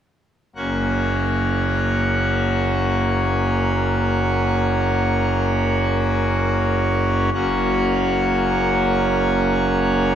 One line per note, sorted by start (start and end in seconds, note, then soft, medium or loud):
0.56 7.30 F#1 medium
0.56 7.30 F#2 medium
0.56 7.29 A#3 medium
0.56 7.30 C#4 medium
0.56 7.29 F#4 medium
7.34 10.15 F#1 medium
7.34 10.15 F#2 medium
7.34 10.15 A#3 medium
7.34 10.15 C#4 medium
7.34 10.15 F#4 medium